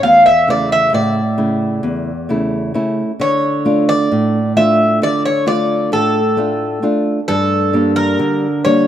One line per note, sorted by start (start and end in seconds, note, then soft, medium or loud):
0.00 0.91 E2 medium
0.00 0.30 A3 soft
0.00 0.30 C#4 soft
0.00 0.30 E4 medium
0.00 0.24 F5 medium
0.26 0.49 E5 medium
0.48 1.20 C#3 soft
0.48 1.20 A3 soft
0.48 1.20 E4 medium
0.48 0.72 D5 medium
0.72 0.92 E5 medium
0.93 1.81 A2 medium
0.93 2.71 D5 medium
1.38 2.11 C#3 soft
1.38 2.10 A3 soft
1.38 2.11 E4 soft
1.83 2.71 E2 medium
2.29 3.02 C#3 soft
2.29 2.73 A3 soft
2.29 2.74 E4 medium
2.74 3.11 A3 medium
2.74 3.11 C#4 soft
2.74 3.11 E4 medium
3.20 4.08 D3 medium
3.20 3.84 C#5 medium
3.65 4.38 A3 soft
3.65 4.38 D4 soft
3.65 4.38 F4 medium
3.89 4.52 D5 medium
4.12 4.99 A2 medium
4.56 5.29 A3 medium
4.56 5.29 D4 soft
4.56 5.29 F4 medium
4.56 4.98 E5 medium
5.02 5.89 D3 medium
5.02 5.23 D5 medium
5.25 5.47 C#5 medium
5.46 6.19 A3 soft
5.46 6.19 D4 soft
5.46 6.19 F4 medium
5.46 5.89 D5 medium
5.92 6.80 A2 medium
5.92 7.24 A4 medium
6.37 6.81 A3 medium
6.37 6.82 D4 soft
6.37 6.82 F4 medium
6.82 7.19 A3 soft
6.82 7.19 D4 soft
6.82 7.19 F4 medium
7.28 8.16 G2 medium
7.28 7.92 A4 medium
7.73 8.46 G3 soft
7.73 8.46 A#3 soft
7.73 8.46 D4 medium
7.96 8.64 A#4 medium
8.19 8.87 D3 medium
8.65 8.87 G3 medium
8.65 8.87 A#3 soft
8.65 8.87 D4 medium
8.65 8.87 C#5 medium